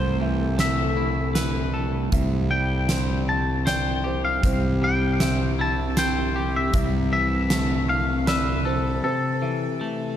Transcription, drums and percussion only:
0.59 snare medium
0.59 closed hi-hat soft
1.35 snare medium
1.35 closed hi-hat soft
2.12 kick medium
2.12 closed hi-hat soft
2.89 snare medium
2.89 closed hi-hat soft
3.67 snare medium
3.67 closed hi-hat soft
4.43 kick medium
4.43 closed hi-hat soft
5.20 snare medium
5.20 closed hi-hat medium
5.97 snare medium
5.97 closed hi-hat soft
6.74 kick medium
6.74 closed hi-hat soft
7.50 snare medium
7.50 closed hi-hat medium
8.27 snare medium
8.27 closed hi-hat soft

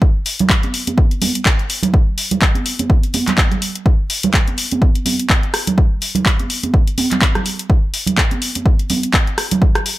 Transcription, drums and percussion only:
0.02 kick loud
0.26 open hi-hat loud
0.39 closed hi-hat medium
0.39 low conga medium
0.39 shaker medium
0.50 kick loud
0.50 clap loud
0.63 closed hi-hat soft
0.63 high conga medium
0.74 open hi-hat loud
0.74 shaker medium
0.87 closed hi-hat medium
0.87 high conga medium
0.87 shaker soft
0.98 kick loud
1.11 closed hi-hat soft
1.22 open hi-hat loud
1.22 high conga medium
1.22 low conga medium
1.22 shaker medium
1.35 closed hi-hat medium
1.35 shaker soft
1.46 kick loud
1.46 clap loud
1.59 closed hi-hat soft
1.70 open hi-hat loud
1.70 shaker medium
1.83 closed hi-hat medium
1.83 low conga medium
1.83 shaker medium
1.94 kick loud
2.17 open hi-hat loud
2.17 shaker medium
2.31 closed hi-hat medium
2.31 low conga medium
2.31 shaker soft
2.42 kick loud
2.42 clap loud
2.42 shaker soft
2.55 closed hi-hat soft
2.55 high conga medium
2.65 open hi-hat loud
2.65 shaker medium
2.79 closed hi-hat medium
2.79 high conga medium
2.79 shaker soft
2.89 kick loud
2.89 shaker soft
3.03 closed hi-hat soft
3.14 open hi-hat loud
3.14 high conga medium
3.14 shaker medium
3.28 clap soft
3.28 closed hi-hat medium
3.28 low conga medium
3.28 shaker soft
3.38 kick loud
3.38 clap loud
3.51 closed hi-hat soft
3.51 low conga medium
3.62 open hi-hat loud
3.62 shaker medium
3.75 closed hi-hat medium
3.75 shaker soft
3.86 kick loud
4.10 open hi-hat medium
4.10 shaker medium
4.23 closed hi-hat medium
4.23 low conga medium
4.23 shaker medium
4.34 kick loud
4.34 clap loud
4.34 shaker soft
4.48 closed hi-hat soft
4.48 high conga medium
4.58 open hi-hat loud
4.58 shaker medium
4.71 closed hi-hat medium
4.71 high conga medium
4.71 shaker soft
4.82 kick loud
4.95 closed hi-hat soft
5.05 open hi-hat loud
5.05 high conga medium
5.05 low conga medium
5.05 shaker medium
5.20 closed hi-hat medium
5.20 shaker soft
5.30 kick loud
5.30 clap loud
5.43 closed hi-hat soft
5.53 cross-stick medium
5.53 open hi-hat loud
5.53 shaker medium
5.67 closed hi-hat medium
5.67 low conga medium
5.67 shaker soft
5.78 kick loud
6.02 open hi-hat medium
6.02 shaker medium
6.15 closed hi-hat medium
6.15 low conga medium
6.15 shaker medium
6.26 kick loud
6.26 clap loud
6.39 closed hi-hat medium
6.39 high conga medium
6.50 open hi-hat loud
6.50 shaker medium
6.63 closed hi-hat medium
6.63 high conga medium
6.63 shaker soft
6.74 kick loud
6.87 closed hi-hat soft
6.98 open hi-hat medium
6.98 high conga medium
6.98 shaker medium
7.12 clap soft
7.12 closed hi-hat medium
7.12 low conga medium
7.12 shaker medium
7.22 kick loud
7.22 clap loud
7.22 shaker soft
7.35 cross-stick medium
7.35 closed hi-hat soft
7.35 low conga medium
7.46 open hi-hat loud
7.46 shaker medium
7.59 closed hi-hat medium
7.59 shaker medium
7.70 kick loud
7.94 open hi-hat medium
7.94 shaker medium
8.07 closed hi-hat medium
8.07 low conga medium
8.07 shaker medium
8.18 kick loud
8.18 clap loud
8.31 closed hi-hat soft
8.31 high conga medium
8.42 open hi-hat loud
8.42 shaker medium
8.55 closed hi-hat medium
8.55 high conga medium
8.55 shaker medium
8.66 kick loud
8.79 closed hi-hat soft
8.90 open hi-hat medium
8.90 high conga medium
8.90 low conga medium
8.90 shaker medium
9.03 closed hi-hat medium
9.03 shaker soft
9.14 kick loud
9.14 clap loud
9.27 closed hi-hat soft
9.38 cross-stick medium
9.38 open hi-hat loud
9.38 shaker medium
9.51 closed hi-hat medium
9.51 low conga medium
9.51 shaker soft
9.61 kick loud
9.61 shaker soft
9.75 cross-stick medium
9.75 closed hi-hat soft
9.86 open hi-hat medium
9.86 shaker loud

